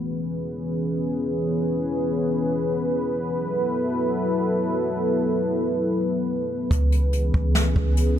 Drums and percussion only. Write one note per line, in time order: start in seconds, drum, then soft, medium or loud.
6.71 kick loud
6.71 closed hi-hat medium
6.92 closed hi-hat medium
7.13 closed hi-hat medium
7.34 kick medium
7.55 snare loud
7.55 closed hi-hat medium
7.76 kick loud
7.97 closed hi-hat medium